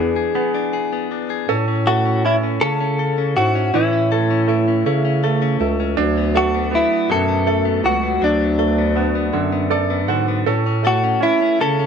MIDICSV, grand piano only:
0, 0, Header, 1, 2, 480
1, 0, Start_track
1, 0, Key_signature, 3, "major"
1, 0, Tempo, 750000
1, 952, Time_signature, 6, 3, 24, 8
1, 7593, End_track
2, 0, Start_track
2, 0, Title_t, "Grand piano"
2, 0, Program_c, 0, 0
2, 0, Control_c, 0, 64, 127
2, 0, Note_on_c, 0, 52, 48
2, 0, Note_on_c, 0, 59, 48
2, 214, Note_off_c, 0, 59, 0
2, 223, Note_on_c, 0, 59, 55
2, 928, Note_off_c, 0, 52, 0
2, 929, Note_off_c, 0, 59, 0
2, 953, Note_on_c, 0, 69, 71
2, 960, Control_c, 0, 64, 0
2, 1087, Control_c, 0, 64, 127
2, 1196, Note_on_c, 0, 57, 43
2, 1437, Note_on_c, 0, 61, 48
2, 2133, Note_off_c, 0, 57, 0
2, 2372, Note_off_c, 0, 69, 0
2, 2373, Note_off_c, 0, 61, 0
2, 2393, Note_on_c, 0, 52, 68
2, 2638, Note_on_c, 0, 57, 51
2, 2855, Note_off_c, 0, 57, 0
2, 2865, Note_on_c, 0, 57, 58
2, 3102, Note_off_c, 0, 57, 0
2, 3111, Note_on_c, 0, 57, 53
2, 3342, Note_off_c, 0, 57, 0
2, 3352, Note_on_c, 0, 57, 59
2, 3577, Note_off_c, 0, 57, 0
2, 3587, Note_on_c, 0, 57, 46
2, 3802, Note_off_c, 0, 52, 0
2, 3820, Note_off_c, 0, 57, 0
2, 3821, Note_on_c, 0, 62, 75
2, 3840, Control_c, 0, 64, 0
2, 3961, Control_c, 0, 64, 127
2, 4062, Note_on_c, 0, 57, 55
2, 4295, Note_on_c, 0, 59, 53
2, 4541, Note_on_c, 0, 47, 54
2, 4770, Note_off_c, 0, 57, 0
2, 4779, Note_on_c, 0, 57, 60
2, 5016, Note_on_c, 0, 54, 44
2, 5226, Note_off_c, 0, 59, 0
2, 5227, Note_off_c, 0, 62, 0
2, 5469, Note_off_c, 0, 47, 0
2, 5485, Note_off_c, 0, 57, 0
2, 5495, Note_on_c, 0, 57, 49
2, 5733, Note_on_c, 0, 59, 46
2, 5949, Note_off_c, 0, 54, 0
2, 5972, Note_on_c, 0, 50, 54
2, 6210, Note_on_c, 0, 69, 49
2, 6212, Note_on_c, 0, 74, 65
2, 6430, Note_off_c, 0, 57, 0
2, 6438, Note_off_c, 0, 74, 0
2, 6444, Note_off_c, 0, 50, 0
2, 6453, Note_on_c, 0, 78, 60
2, 6454, Note_on_c, 0, 50, 52
2, 6670, Note_off_c, 0, 59, 0
2, 6678, Note_off_c, 0, 78, 0
2, 6680, Note_off_c, 0, 69, 0
2, 6689, Note_off_c, 0, 50, 0
2, 6697, Note_on_c, 0, 69, 64
2, 6707, Control_c, 0, 64, 0
2, 6801, Control_c, 0, 64, 127
2, 6931, Note_on_c, 0, 57, 43
2, 7172, Note_on_c, 0, 61, 51
2, 7593, Note_off_c, 0, 57, 0
2, 7593, Note_off_c, 0, 61, 0
2, 7593, Note_off_c, 0, 69, 0
2, 7593, End_track
0, 0, End_of_file